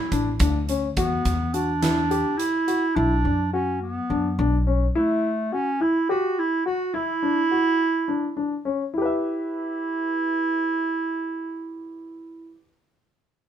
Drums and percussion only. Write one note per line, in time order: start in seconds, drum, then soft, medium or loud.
0.12 kick medium
0.12 closed hi-hat medium
0.40 kick loud
0.40 snare soft
0.40 closed hi-hat medium
0.69 closed hi-hat medium
0.97 kick medium
0.97 closed hi-hat medium
1.25 kick medium
1.25 snare soft
1.25 closed hi-hat medium
1.54 closed hi-hat medium
1.83 snare loud
1.83 closed hi-hat medium
2.11 closed hi-hat medium
2.39 closed hi-hat medium
2.68 closed hi-hat medium